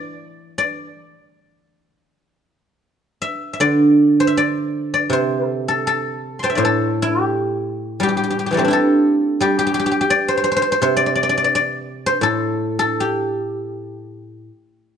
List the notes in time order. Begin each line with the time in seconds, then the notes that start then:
Already playing: E3 C5 D5
0.58 D5
3.22 E5
3.53 E5
3.60 D3 D5
4.20 C5
4.27 E5
4.37 D5
4.94 D5
5.10 C3 C5
5.47 A4
5.68 A4
5.87 A4
6.39 A5 C6
6.44 C5 G5
6.50 E5
6.55 A2 C5 D5
6.65 A4
7.02 G4
8.00 G3 G4
8.09 G4
8.17 G4
8.24 G4
8.30 G4
8.39 G4
8.46 G4
8.51 E3 G3 G4
8.57 A3 C4 G4
8.65 D4 E4
8.71 G4 A4
9.41 G3 G4
9.59 G4
9.67 G4
9.74 G4
9.79 G4
9.86 G4
9.91 G4
10.01 G4
10.10 D5
10.28 C5
10.37 C5
10.44 C5
10.52 C5
10.57 C5
10.62 C5
10.72 C5
10.82 C3 C5
10.97 D5
11.06 D5
11.15 D5
11.23 D5
11.29 D5
11.38 D5
11.44 D5
11.55 D5
12.06 C5
12.21 A2 A4
12.79 A4
13.00 G4